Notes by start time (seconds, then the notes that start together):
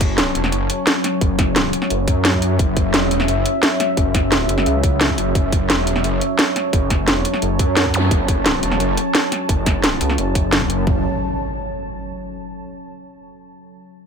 Already playing: F#1 F#3 C#4 C#5 E5
0.01 kick, closed hi-hat
0.18 snare, closed hi-hat
0.35 E1, closed hi-hat
0.44 snare
0.52 F#1, closed hi-hat
0.70 closed hi-hat
0.87 snare, closed hi-hat
1.04 snare, closed hi-hat
1.21 F#1, kick, closed hi-hat
1.39 kick, snare, closed hi-hat
1.56 snare, closed hi-hat
1.73 closed hi-hat
1.82 snare
1.90 F#1, closed hi-hat
2.08 F#2, kick, closed hi-hat
2.25 snare, closed hi-hat
2.33 kick
2.42 closed hi-hat
2.59 F#1, kick, closed hi-hat
2.77 kick, closed hi-hat
2.94 snare, closed hi-hat
3.11 E1, closed hi-hat
3.20 snare
3.28 F#1, closed hi-hat
3.46 closed hi-hat
3.63 snare, closed hi-hat
3.80 snare, closed hi-hat
3.97 F#1, kick, closed hi-hat
4.14 kick, snare, closed hi-hat
4.32 snare, closed hi-hat
4.49 F#1, closed hi-hat
4.58 snare
4.66 C#2, closed hi-hat
4.83 kick, closed hi-hat
5.01 snare, closed hi-hat
5.09 kick
5.18 F#1, closed hi-hat
5.35 F#1 A5, kick, closed hi-hat
5.52 kick, closed hi-hat
5.70 snare, closed hi-hat
5.87 E1, closed hi-hat
5.96 snare
6.04 F#1, closed hi-hat
6.21 closed hi-hat
6.39 snare, closed hi-hat
6.56 snare, closed hi-hat
6.73 F#1, kick, closed hi-hat
6.90 kick, snare, closed hi-hat
7.08 snare, closed hi-hat
7.25 closed hi-hat
7.34 snare
7.42 F#1, closed hi-hat
7.59 F#2, kick, closed hi-hat
7.77 snare, closed hi-hat
7.85 kick
7.94 closed hi-hat, zap
8.11 F#1, kick, closed hi-hat
8.28 kick, closed hi-hat
8.46 snare, closed hi-hat
8.63 E1, closed hi-hat
8.71 snare
8.80 F#1, closed hi-hat
8.97 closed hi-hat
9.15 snare, closed hi-hat
9.32 snare, closed hi-hat
9.49 F#1, kick, closed hi-hat
9.66 kick, snare, closed hi-hat
9.84 snare, closed hi-hat
10.01 C#2, closed hi-hat
10.09 snare
10.18 F#1, closed hi-hat
10.35 kick, closed hi-hat
10.53 snare, closed hi-hat
10.61 kick
10.70 F#1, closed hi-hat
10.87 F#1, kick, impact